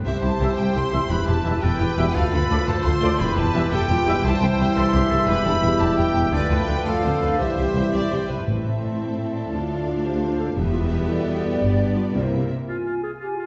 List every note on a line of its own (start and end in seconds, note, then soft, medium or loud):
0.03 0.12 C2 medium
0.03 0.12 E4 soft
0.03 1.12 G4 medium
0.03 0.13 G4 medium
0.03 1.06 C5 medium
0.03 0.55 C5 soft
0.03 0.11 E5 medium
0.03 0.22 E5 medium
0.21 0.30 C2 medium
0.21 0.29 E4 soft
0.21 0.29 G4 soft
0.21 0.57 A5 medium
0.21 0.58 A5 medium
0.39 0.46 C2 medium
0.39 0.48 C2 soft
0.39 0.46 C3 medium
0.39 0.47 E3 medium
0.39 0.48 G3 medium
0.39 0.47 E4 soft
0.39 0.48 E4 medium
0.39 0.48 G4 soft
0.39 0.47 E5 medium
0.57 0.65 C2 medium
0.57 0.66 C2 medium
0.57 0.64 E4 soft
0.57 0.64 G4 soft
0.57 1.10 C5 medium
0.57 0.76 G5 medium
0.72 0.82 C2 medium
0.72 0.83 C2 medium
0.72 0.80 E4 soft
0.72 0.80 G4 soft
0.72 1.11 C6 medium
0.76 1.11 C6 medium
0.90 1.00 C2 medium
0.90 0.99 C3 medium
0.90 0.99 E3 medium
0.90 0.98 E4 soft
0.90 0.98 G4 soft
0.90 0.99 E5 medium
0.94 1.00 G3 medium
0.94 1.01 E4 medium
1.09 1.17 E1 medium
1.09 1.17 E2 medium
1.09 1.17 E4 medium
1.09 1.62 E4 soft
1.09 1.16 G4 soft
1.09 1.62 G4 medium
1.09 1.65 B4 medium
1.09 1.28 B5 medium
1.27 1.35 E1 medium
1.27 1.35 E2 medium
1.27 1.34 E4 soft
1.27 1.34 G4 soft
1.27 1.62 A5 medium
1.44 1.53 E1 medium
1.44 1.53 E2 medium
1.44 1.51 B2 medium
1.44 1.52 E3 medium
1.44 1.54 G3 medium
1.44 1.51 E4 medium
1.44 1.51 G4 soft
1.44 1.52 E5 medium
1.48 1.54 E4 medium
1.61 1.70 E1 medium
1.61 1.71 E2 medium
1.61 1.68 E4 medium
1.61 2.17 E4 medium
1.61 1.69 G4 medium
1.61 1.81 A4 medium
1.61 2.66 B4 medium
1.61 2.14 G5 medium
1.79 1.88 E1 medium
1.79 1.88 E2 medium
1.79 1.86 E4 soft
1.79 1.97 G4 medium
1.79 1.87 G4 soft
1.97 2.05 E1 medium
1.97 2.05 E2 medium
1.97 2.04 B2 medium
1.97 2.04 E3 medium
1.97 2.06 G3 medium
1.97 2.05 E4 medium
1.97 2.16 G4 medium
1.97 2.05 G4 soft
1.97 2.04 E5 medium
2.14 2.22 D2 medium
2.14 2.23 D2 medium
2.14 2.68 F4 medium
2.14 2.23 F4 medium
2.14 2.67 A4 medium
2.14 2.23 A4 medium
2.14 2.33 F5 medium
2.14 2.22 F5 medium
2.33 2.40 D2 medium
2.33 2.41 F4 medium
2.33 2.41 A4 medium
2.33 2.67 B5 medium
2.33 2.68 B5 medium
2.50 2.57 D2 medium
2.50 2.58 D2 medium
2.50 2.58 A2 medium
2.50 2.58 F3 medium
2.50 2.57 A3 medium
2.50 2.58 F4 medium
2.50 2.58 A4 medium
2.50 2.57 A4 medium
2.50 2.57 D5 medium
2.67 2.75 D2 medium
2.67 2.74 F4 medium
2.67 3.22 F4 medium
2.67 3.21 A4 medium
2.67 2.75 A4 medium
2.67 3.20 C5 medium
2.67 2.86 A5 medium
2.84 2.92 D2 medium
2.84 2.91 F4 medium
2.84 2.91 A4 medium
2.84 3.20 C6 medium
2.84 3.19 C6 medium
3.01 3.10 D2 medium
3.01 3.09 A2 medium
3.01 3.08 F3 medium
3.01 3.07 A3 medium
3.01 3.09 F4 medium
3.01 3.09 A4 medium
3.01 3.08 A4 medium
3.01 3.09 D5 medium
3.18 3.28 E1 medium
3.18 3.27 E2 medium
3.18 3.26 E4 medium
3.18 3.72 E4 medium
3.18 3.26 G4 medium
3.18 4.26 G4 medium
3.18 3.71 B4 medium
3.18 3.37 B5 medium
3.18 3.38 B5 medium
3.36 3.45 E1 medium
3.36 3.45 E2 medium
3.36 3.44 E4 medium
3.36 3.43 G4 medium
3.36 3.71 A5 loud
3.36 3.72 A5 medium
3.54 3.62 E1 medium
3.54 3.62 E2 medium
3.54 3.60 B2 medium
3.54 3.61 E3 medium
3.54 3.62 G3 medium
3.54 3.61 E4 medium
3.54 3.62 G4 medium
3.54 3.61 E5 medium
3.72 3.79 E1 medium
3.72 3.79 E2 medium
3.72 3.79 E4 medium
3.72 3.80 E4 medium
3.72 3.80 G4 medium
3.72 3.90 A4 medium
3.72 4.23 G5 medium
3.89 3.96 E1 medium
3.89 3.97 E2 medium
3.89 3.98 E4 medium
3.89 4.09 F4 medium
3.89 4.07 G4 medium
3.89 3.97 G4 medium
4.05 4.15 E1 medium
4.05 4.13 E2 medium
4.05 4.12 B2 medium
4.05 4.12 E3 medium
4.05 4.13 G3 medium
4.05 4.13 E4 medium
4.05 4.15 E4 medium
4.05 4.24 G4 medium
4.05 4.14 G4 medium
4.05 4.24 B4 medium
4.05 4.13 E5 medium
4.23 4.31 C2 medium
4.23 5.24 G2 medium
4.23 6.29 E3 medium
4.23 6.29 G3 medium
4.23 6.29 E4 medium
4.23 5.27 E4 medium
4.23 4.34 E4 medium
4.23 4.79 C5 medium
4.23 4.76 C5 medium
4.23 6.29 E5 medium
4.23 4.42 A5 loud
4.28 4.34 G4 medium
4.41 4.48 C2 medium
4.41 4.49 C2 medium
4.41 4.49 E4 medium
4.41 4.50 G4 medium
4.41 4.76 G5 medium
4.41 4.77 G5 medium
4.59 4.66 C2 medium
4.59 4.67 E4 medium
4.59 4.67 G4 medium
4.76 4.83 C2 medium
4.76 4.84 C2 medium
4.76 4.84 E4 medium
4.76 4.84 G4 medium
4.76 4.93 A4 medium
4.76 4.95 A4 medium
4.76 5.28 C6 medium
4.76 5.05 C6 medium
4.93 5.00 C2 medium
4.93 5.01 C2 medium
4.93 5.01 E4 medium
4.93 5.11 G4 medium
4.93 5.00 G4 medium
4.93 5.12 G4 medium
5.09 5.18 C2 medium
5.09 5.18 E4 medium
5.09 5.18 G4 medium
5.09 5.28 A4 medium
5.09 5.27 A4 medium
5.26 5.35 E1 medium
5.26 5.35 E2 medium
5.26 6.33 B2 medium
5.26 5.33 E4 medium
5.26 5.36 E4 medium
5.26 5.34 G4 medium
5.26 5.79 G4 medium
5.26 5.45 B4 medium
5.26 5.80 B5 loud
5.26 5.80 B5 medium
5.45 5.52 E1 medium
5.45 5.52 E2 medium
5.45 5.54 D4 medium
5.45 5.52 E4 medium
5.45 5.52 G4 medium
5.45 5.52 A4 medium
5.62 5.70 E1 medium
5.62 5.71 E2 medium
5.62 6.55 E4 medium
5.62 5.70 E4 medium
5.62 6.31 G4 medium
5.62 5.70 G4 medium
5.80 5.89 E1 medium
5.80 5.88 E2 medium
5.80 5.87 E4 medium
5.80 5.87 G4 medium
5.80 6.34 G4 medium
5.80 5.98 A5 medium
5.97 6.05 E1 medium
5.97 6.05 E2 medium
5.97 6.04 E4 medium
5.97 6.05 G4 medium
5.97 6.32 G5 medium
5.97 6.33 G5 medium
6.15 6.22 E1 medium
6.15 6.23 E2 medium
6.15 6.22 E4 medium
6.15 6.22 G4 medium
6.32 6.39 D2 medium
6.32 6.40 D2 medium
6.32 7.37 D3 medium
6.32 7.37 F3 medium
6.32 7.39 A3 medium
6.32 6.40 F4 medium
6.32 6.40 A4 medium
6.32 6.67 A4 medium
6.32 7.38 A4 medium
6.32 6.85 B4 medium
6.32 7.39 D5 medium
6.32 6.50 D5 medium
6.32 6.51 D5 medium
6.50 6.57 D2 medium
6.50 6.57 F4 medium
6.50 6.58 A4 medium
6.50 6.85 G5 medium
6.50 6.86 G5 medium
6.67 6.75 D2 medium
6.67 6.76 D2 medium
6.67 6.75 F4 medium
6.67 6.74 A4 medium
6.85 6.93 D2 medium
6.85 6.93 F4 medium
6.85 7.05 F4 medium
6.85 7.35 A4 medium
6.85 6.93 A4 medium
6.85 7.04 A4 medium
6.85 7.39 F5 medium
6.85 7.40 F5 medium
7.03 7.11 D2 medium
7.03 7.11 D2 soft
7.03 7.24 C4 medium
7.03 7.11 F4 soft
7.03 7.11 A4 soft
7.03 7.21 C5 medium
7.21 7.29 D2 medium
7.21 7.44 D4 medium
7.21 7.29 F4 soft
7.21 7.29 A4 soft
7.21 7.39 B4 medium
7.38 7.46 C2 medium
7.38 7.47 C2 medium
7.38 8.30 E3 medium
7.38 8.30 G3 medium
7.38 8.29 C4 soft
7.38 8.29 G4 soft
7.38 7.46 G4 medium
7.38 8.28 G4 soft
7.38 7.46 C5 medium
7.38 7.90 C5 medium
7.38 8.28 C5 medium
7.38 8.30 E5 medium
7.38 8.29 E5 medium
7.42 8.31 E4 medium
7.57 7.64 C2 medium
7.57 7.66 C2 soft
7.57 7.65 G4 soft
7.57 7.65 C5 soft
7.75 7.83 C2 medium
7.75 7.84 C2 medium
7.75 7.82 G4 soft
7.75 7.84 C5 soft
7.93 8.01 C2 medium
7.93 8.02 G4 soft
7.93 8.01 C5 soft
7.93 8.10 D5 medium
8.11 8.19 C2 medium
8.11 8.19 C2 soft
8.11 8.19 G4 soft
8.11 8.18 C5 soft
8.11 8.30 C5 medium
8.28 8.36 C2 medium
8.28 8.36 G4 soft
8.28 8.47 B4 medium
8.28 8.35 C5 soft
8.45 8.80 A1 soft
8.45 9.48 A2 soft
8.45 8.96 A2 soft
8.45 10.53 A2 soft
8.45 10.53 A3 soft
8.45 9.48 C4 soft
8.45 9.48 E4 soft
8.45 9.55 E4 soft
8.45 10.51 A4 soft
8.45 8.64 C5 soft
8.45 9.49 E5 soft
8.66 8.83 E5 soft
8.83 9.00 D5 soft
9.00 9.17 C5 soft
9.17 9.35 E5 soft
9.35 10.04 D5 soft
9.52 10.57 D2 soft
9.52 9.85 D2 soft
9.52 10.56 D4 soft
9.52 10.54 D4 soft
9.52 10.07 F4 soft
9.52 10.53 F4 soft
9.52 10.57 F5 soft
10.04 10.22 G4 soft
10.04 10.56 C5 soft
10.23 10.30 F4 soft
10.39 10.47 A4 medium
10.56 10.89 E1 medium
10.56 11.60 E2 medium
10.56 11.58 B2 medium
10.56 12.48 G3 medium
10.56 12.12 B3 medium
10.56 11.58 E4 medium
10.56 10.64 G4 medium
10.56 12.51 G4 medium
10.56 11.08 B4 soft
10.56 11.60 E5 soft
10.73 10.81 F4 medium
10.91 11.09 E4 medium
11.08 11.63 A4 medium
11.08 12.15 D5 medium
11.61 11.95 G1 medium
11.61 12.14 G2 medium
11.61 12.47 G2 medium
11.61 12.11 D4 medium
11.61 11.79 G4 soft
11.61 12.15 D5 soft
11.80 11.95 G4 soft
11.96 12.04 F4 soft
12.14 12.48 C2 soft
12.14 12.51 C3 soft
12.14 12.49 A#3 soft
12.14 12.51 A#3 soft
12.14 12.50 E4 soft
12.14 12.49 E4 soft
12.14 12.44 C5 soft
12.14 12.51 E5 soft
12.68 13.01 F4 soft
12.68 12.76 F4 soft
12.68 12.85 G#5 soft
12.86 12.94 F4 soft
12.86 13.03 G#5 soft
13.03 13.11 F4 soft
13.03 13.11 G#4 medium
13.03 13.21 G#5 soft
13.20 13.28 F4 soft
13.20 13.35 G4 medium
13.20 13.39 G#5 soft
13.36 13.46 F4 soft
13.36 13.46 G#5 soft